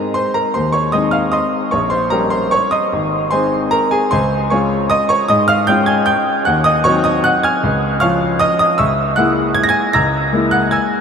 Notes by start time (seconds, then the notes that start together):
Already playing: G#2 G#3 C4 D#4 G#4 A#4 D#5 G#5 A#5
0.14 C5 C6
0.34 A#4 A#5
0.54 D#2 C5 C6
0.72 C#5 C#6
0.92 G#3 C4 D#4 D#5 D#6
1.11 F5 F6
1.32 D#5 C6 D#6
1.71 A#1 C#5 C#6
1.90 C5 C6
2.10 G3 C#4 G4 A#4 A#5
2.30 C5 C6
2.51 C#5 C#6
2.71 D#5 C6 D#6
2.93 G#1
3.31 G#3 C4 D#4 C5 G#5 C6
3.71 A#4 A#5
3.91 G#4 G#5
4.11 C#2 C5 G#5 C6
4.50 G#3 C#4 F4 C#5 G#5 C#6
4.90 D#5 D#6
5.09 C#5 C#6
5.28 G#2 D#5 D#6
5.48 F5 F6
5.67 G#3 C#4 F4 G5 G6
5.86 G#5 G#6
6.06 G5 G6
6.45 D#2 F#5 F#6
6.64 D#5 D#6
6.84 F#3 C4 D#4 C#5 C#6
7.04 D#5 D#6
7.24 F#5 F#6
7.43 G#5 F6 G#6
7.64 C#2
8.00 F3 C#4 F4 F5 C#6 F6
8.39 D#5 D#6
8.59 D#5 D#6
8.78 C#2 E5 C#6 E6
9.16 G#3 A#3 E4 F#5 F#6
9.55 G#6
9.64 A#6
9.69 G#5 G#6
9.93 C#2 A#5 E6 A#6
10.33 G#3 A#3 E4
10.51 F#5 F#6
10.71 G#5 E6 G#6